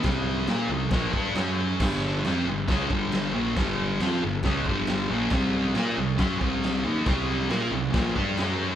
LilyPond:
<<
  \new Staff \with { instrumentName = "Distorted electric guitar" } { \clef bass \time 4/4 \key c \major \tempo 4 = 137 <c g c'>4 <bes f' bes'>8 <c g>8 <bes, f bes>8 <g d' g'>8 <fis cis' fis'>4 | <g, d g>4 <f c' f'>8 <g, d>8 <cis aes cis'>8 <g, d g>4 <bes, f bes>8 | <g, d g>4 <f c' f'>8 <g, d>8 <cis aes cis'>8 <g, d g>4 <bes, f bes>8 | <c g c'>4 <bes f' bes'>8 <c g>8 <fis cis' fis'>8 <c g c'>4 <ees bes ees'>8 |
<c g c'>4 <bes f' bes'>8 <c g>8 <bes, f bes>8 <g d' g'>8 <fis cis' fis'>4 | }
  \new Staff \with { instrumentName = "Fingered electric bass" } { \clef bass \time 4/4 \key c \major c,4 bes,8 c,8 bes,,8 g,8 fis,4 | g,,4 f,8 g,,8 cis,8 g,,4 bes,,8 | g,,4 f,8 g,,8 cis,8 g,,4 bes,,8 | c,4 bes,8 c,8 fis,8 c,4 ees,8 |
c,4 bes,8 c,8 bes,,8 g,8 fis,4 | }
  \new DrumStaff \with { instrumentName = "Drums" } \drummode { \time 4/4 <cymc bd sn>4 <cymc sn>4 <cymc bd sn>8 bd8 <cymc sn>4 | <cymc bd sn>4 <cymc sn>4 <cymc bd sn>8 bd8 <cymc sn>4 | <cymc bd sn>4 <cymc sn>4 <cymc bd sn>8 bd8 <cymc sn>4 | <cymc bd sn>4 <cymc sn>4 <cymc bd sn>8 bd8 <cymc sn>4 |
<cymc bd sn>4 <cymc sn>4 <cymc bd sn>8 bd8 <cymc sn>4 | }
>>